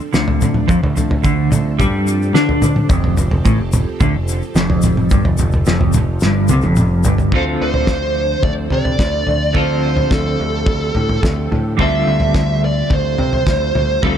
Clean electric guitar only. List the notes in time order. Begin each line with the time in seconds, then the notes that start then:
0.13 D3
0.68 F3
0.81 D3
0.96 D3
1.23 D3
1.51 D3
1.79 G3
2.35 D4
2.91 F2
3.17 F2
3.32 F2
3.45 A2
3.59 F2
4.00 D3
4.14 F2
4.55 F2
5.11 G2
5.26 F2
5.39 F2
5.67 F2
5.95 F2
6.24 G2
6.51 C3
6.65 F2
7.06 G2
7.33 D3 C4 F4 A4
9.53 D3 C4 F4 A4
11.77 D3 G3 C4 F4 A4
14.02 D3 G3 C4 F4 A4